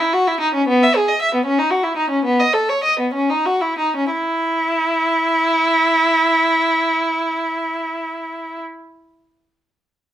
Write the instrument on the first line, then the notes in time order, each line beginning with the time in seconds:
violin
0.00 E4
0.13 F#4
0.27 E4
0.40 D#4
0.54 C#4
0.68 B3
0.83 E5
0.95 G#4
1.08 D#5
1.22 E5
1.34 B3
1.45 C#4
1.59 D#4
1.70 F#4
1.84 E4
1.97 D#4
2.10 C#4
2.25 B3
2.40 D#5
2.54 A4
2.69 C#5
2.84 D#5
3.00 B3
3.14 C#4
3.30 D#4
3.46 F#4
3.61 E4
3.79 D#4
3.97 C#4
4.12 E4